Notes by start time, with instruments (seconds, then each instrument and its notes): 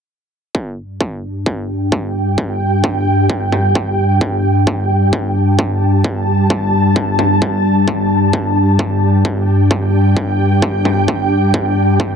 0.55 synth drone G2, ambient pad D4, kick
0.95 ambient pad G4
1.01 kick
1.28 ambient pad G5
1.46 kick
1.92 kick
2.38 kick
2.84 kick
3.30 kick
3.52 kick
3.75 kick
4.21 kick
4.67 kick
4.95 ambient pad A5
5.13 kick
5.59 kick
6.04 kick
6.50 kick
6.96 kick
7.19 kick
7.42 kick
7.88 kick
8.33 kick
8.61 ambient pad G5
8.79 kick
9.25 kick
9.71 kick
10.17 kick
10.62 kick
10.85 kick
11.08 kick
11.54 kick
12.00 kick